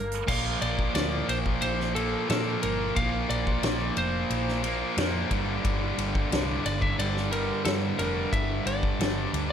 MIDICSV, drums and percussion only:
0, 0, Header, 1, 2, 480
1, 0, Start_track
1, 0, Tempo, 669643
1, 206, Time_signature, 4, 2, 24, 8
1, 6828, End_track
2, 0, Start_track
2, 0, Title_t, "Drums"
2, 83, Note_on_c, 9, 42, 51
2, 155, Note_off_c, 9, 42, 0
2, 202, Note_on_c, 9, 49, 113
2, 203, Note_on_c, 9, 36, 111
2, 274, Note_off_c, 9, 49, 0
2, 275, Note_off_c, 9, 36, 0
2, 443, Note_on_c, 9, 51, 73
2, 515, Note_off_c, 9, 51, 0
2, 564, Note_on_c, 9, 36, 88
2, 636, Note_off_c, 9, 36, 0
2, 680, Note_on_c, 9, 51, 111
2, 687, Note_on_c, 9, 38, 112
2, 752, Note_off_c, 9, 51, 0
2, 759, Note_off_c, 9, 38, 0
2, 925, Note_on_c, 9, 51, 80
2, 997, Note_off_c, 9, 51, 0
2, 1045, Note_on_c, 9, 36, 82
2, 1116, Note_off_c, 9, 36, 0
2, 1158, Note_on_c, 9, 51, 107
2, 1230, Note_off_c, 9, 51, 0
2, 1294, Note_on_c, 9, 38, 32
2, 1365, Note_off_c, 9, 38, 0
2, 1406, Note_on_c, 9, 51, 82
2, 1478, Note_off_c, 9, 51, 0
2, 1646, Note_on_c, 9, 51, 106
2, 1653, Note_on_c, 9, 38, 125
2, 1717, Note_off_c, 9, 51, 0
2, 1725, Note_off_c, 9, 38, 0
2, 1883, Note_on_c, 9, 51, 77
2, 1955, Note_off_c, 9, 51, 0
2, 2124, Note_on_c, 9, 51, 98
2, 2126, Note_on_c, 9, 36, 104
2, 2196, Note_off_c, 9, 51, 0
2, 2198, Note_off_c, 9, 36, 0
2, 2368, Note_on_c, 9, 51, 74
2, 2439, Note_off_c, 9, 51, 0
2, 2487, Note_on_c, 9, 36, 89
2, 2559, Note_off_c, 9, 36, 0
2, 2603, Note_on_c, 9, 51, 98
2, 2610, Note_on_c, 9, 38, 116
2, 2674, Note_off_c, 9, 51, 0
2, 2682, Note_off_c, 9, 38, 0
2, 2843, Note_on_c, 9, 51, 73
2, 2915, Note_off_c, 9, 51, 0
2, 3085, Note_on_c, 9, 51, 93
2, 3157, Note_off_c, 9, 51, 0
2, 3214, Note_on_c, 9, 38, 35
2, 3286, Note_off_c, 9, 38, 0
2, 3324, Note_on_c, 9, 51, 73
2, 3395, Note_off_c, 9, 51, 0
2, 3566, Note_on_c, 9, 51, 103
2, 3573, Note_on_c, 9, 38, 119
2, 3638, Note_off_c, 9, 51, 0
2, 3645, Note_off_c, 9, 38, 0
2, 3805, Note_on_c, 9, 51, 76
2, 3806, Note_on_c, 9, 36, 91
2, 3877, Note_off_c, 9, 51, 0
2, 3878, Note_off_c, 9, 36, 0
2, 4047, Note_on_c, 9, 51, 105
2, 4048, Note_on_c, 9, 36, 113
2, 4119, Note_off_c, 9, 51, 0
2, 4120, Note_off_c, 9, 36, 0
2, 4290, Note_on_c, 9, 51, 79
2, 4361, Note_off_c, 9, 51, 0
2, 4410, Note_on_c, 9, 36, 92
2, 4481, Note_off_c, 9, 36, 0
2, 4531, Note_on_c, 9, 51, 107
2, 4539, Note_on_c, 9, 38, 110
2, 4603, Note_off_c, 9, 51, 0
2, 4610, Note_off_c, 9, 38, 0
2, 4771, Note_on_c, 9, 51, 81
2, 4843, Note_off_c, 9, 51, 0
2, 4890, Note_on_c, 9, 36, 87
2, 4961, Note_off_c, 9, 36, 0
2, 5013, Note_on_c, 9, 51, 109
2, 5085, Note_off_c, 9, 51, 0
2, 5139, Note_on_c, 9, 38, 34
2, 5210, Note_off_c, 9, 38, 0
2, 5250, Note_on_c, 9, 51, 82
2, 5322, Note_off_c, 9, 51, 0
2, 5485, Note_on_c, 9, 51, 110
2, 5492, Note_on_c, 9, 38, 121
2, 5557, Note_off_c, 9, 51, 0
2, 5564, Note_off_c, 9, 38, 0
2, 5728, Note_on_c, 9, 51, 82
2, 5800, Note_off_c, 9, 51, 0
2, 5969, Note_on_c, 9, 36, 111
2, 5973, Note_on_c, 9, 51, 100
2, 6041, Note_off_c, 9, 36, 0
2, 6044, Note_off_c, 9, 51, 0
2, 6212, Note_on_c, 9, 51, 75
2, 6283, Note_off_c, 9, 51, 0
2, 6329, Note_on_c, 9, 36, 89
2, 6401, Note_off_c, 9, 36, 0
2, 6455, Note_on_c, 9, 51, 97
2, 6462, Note_on_c, 9, 38, 110
2, 6527, Note_off_c, 9, 51, 0
2, 6534, Note_off_c, 9, 38, 0
2, 6694, Note_on_c, 9, 51, 71
2, 6766, Note_off_c, 9, 51, 0
2, 6828, End_track
0, 0, End_of_file